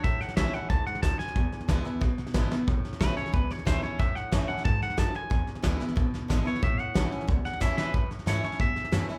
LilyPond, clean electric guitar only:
\new Staff \with { instrumentName = "Clean electric guitar" } { \time 4/4 \key a \major \tempo 4 = 182 << { e''8 fis''8 e''8 fis''8 a''8 fis''8 a''8 gis''8~ | gis''2~ gis''8 r4. | r4 b'8 cis''8 b'8 cis''8 c''8 cis''8 | e''8 fis''8 e''8 fis''8 a''8 fis''8 a''8 gis''8~ |
gis''2~ gis''8 r4 cis''8 | e''8 fis''2 fis''8 e''8 e''8 | r1 | } \\ { r1 | r1 | r1 | r1 |
r1 | r2. r8 b'8~ | b'8 r8 cis''8 cis''8 e''4. r8 | } >> }